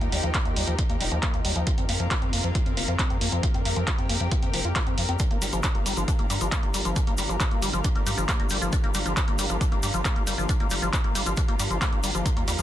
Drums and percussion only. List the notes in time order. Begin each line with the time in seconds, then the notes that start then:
0.01 closed hi-hat
0.12 open hi-hat
0.23 closed hi-hat
0.34 kick, clap, closed hi-hat
0.45 closed hi-hat
0.56 open hi-hat
0.68 closed hi-hat
0.79 kick, closed hi-hat
0.90 closed hi-hat
1.01 open hi-hat
1.12 closed hi-hat
1.23 kick, clap, closed hi-hat
1.34 closed hi-hat
1.45 open hi-hat
1.56 closed hi-hat
1.67 kick, closed hi-hat
1.78 closed hi-hat
1.89 open hi-hat
2.00 closed hi-hat
2.11 kick, clap, closed hi-hat
2.22 closed hi-hat
2.33 open hi-hat
2.44 closed hi-hat
2.55 kick, closed hi-hat
2.66 closed hi-hat
2.77 open hi-hat
2.88 closed hi-hat
2.99 kick, clap, closed hi-hat
3.10 closed hi-hat
3.21 open hi-hat
3.32 closed hi-hat
3.43 kick, closed hi-hat
3.54 closed hi-hat
3.65 open hi-hat
3.76 closed hi-hat
3.87 kick, clap, closed hi-hat
3.98 closed hi-hat
4.09 open hi-hat
4.20 closed hi-hat
4.31 kick, closed hi-hat
4.43 closed hi-hat
4.54 open hi-hat
4.65 closed hi-hat
4.76 kick, clap, closed hi-hat
4.87 closed hi-hat
4.98 open hi-hat
5.09 closed hi-hat
5.19 kick, closed hi-hat, shaker
5.31 closed hi-hat
5.42 open hi-hat, shaker
5.53 closed hi-hat, shaker
5.63 kick, clap, closed hi-hat, shaker
5.75 closed hi-hat
5.86 open hi-hat, shaker
5.97 closed hi-hat, shaker
6.08 kick, closed hi-hat, shaker
6.19 closed hi-hat
6.30 open hi-hat, shaker
6.41 closed hi-hat, shaker
6.52 kick, clap, closed hi-hat, shaker
6.63 closed hi-hat
6.74 open hi-hat, shaker
6.85 closed hi-hat, shaker
6.96 kick, closed hi-hat, shaker
7.07 closed hi-hat
7.18 open hi-hat, shaker
7.29 closed hi-hat, shaker
7.40 kick, clap, closed hi-hat, shaker
7.51 closed hi-hat
7.62 open hi-hat, shaker
7.73 closed hi-hat, shaker
7.84 kick, closed hi-hat, shaker
7.95 closed hi-hat
8.07 open hi-hat, shaker
8.18 closed hi-hat, shaker
8.29 kick, clap, closed hi-hat, shaker
8.40 closed hi-hat
8.50 open hi-hat, shaker
8.62 closed hi-hat, shaker
8.72 kick, closed hi-hat, shaker
8.84 closed hi-hat
8.94 open hi-hat, shaker
9.06 closed hi-hat, shaker
9.17 kick, clap, closed hi-hat, shaker
9.28 closed hi-hat
9.39 open hi-hat, shaker
9.49 closed hi-hat, shaker
9.61 kick, closed hi-hat, shaker
9.72 closed hi-hat
9.83 open hi-hat, shaker
9.94 closed hi-hat, shaker
10.05 kick, clap, closed hi-hat, shaker
10.16 closed hi-hat
10.27 open hi-hat, shaker
10.38 closed hi-hat, shaker
10.49 kick, closed hi-hat, shaker
10.60 closed hi-hat
10.70 open hi-hat, shaker
10.82 closed hi-hat, shaker
10.93 kick, clap, closed hi-hat, shaker
11.04 closed hi-hat
11.15 open hi-hat, shaker
11.26 closed hi-hat, shaker
11.37 kick, closed hi-hat, shaker
11.48 closed hi-hat
11.59 open hi-hat, shaker
11.70 closed hi-hat, shaker
11.81 kick, clap, closed hi-hat, shaker
11.93 closed hi-hat
12.04 open hi-hat, shaker
12.15 closed hi-hat, shaker
12.26 kick, closed hi-hat, shaker
12.37 closed hi-hat
12.48 open hi-hat, shaker
12.59 closed hi-hat, shaker